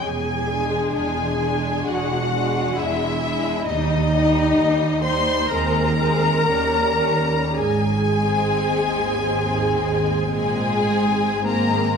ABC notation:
X:1
M:4/4
L:1/8
Q:1/4=63
K:Ab
V:1 name="Violin section"
^g2 g2 _g2 =e2 | e3 c' b4 | a4- a a2 b |]
V:2 name="Viola section"
^G2 G2 _G2 =E2 | E3 c B4 | A4- A A,2 B, |]
V:3 name="Violin section"
z [^G,=D]2 [G,D]2 [G,D]2 [G,D] | [G,E] [G,E]2 [G,E] [A,C] [A,C] [G,D] [G,D] | z [A,C]2 [A,C]2 [A,CA]2 [A,CB] |]
V:4 name="Cello section" clef=bass
=E,,2 E,,2 E,,2 E,,2 | E,,2 E,,2 E,,2 E,,2 | A,,2 E,,3 B,, A,,2 |]
V:5 name="Double bass section" clef=bass
=E,,,2 E,,,2 E,,,2 E,,,2 | E,,2 E,,2 E,,2 E,,2 | A,,,2 A,,,2 A,,,2 A,,,2 |]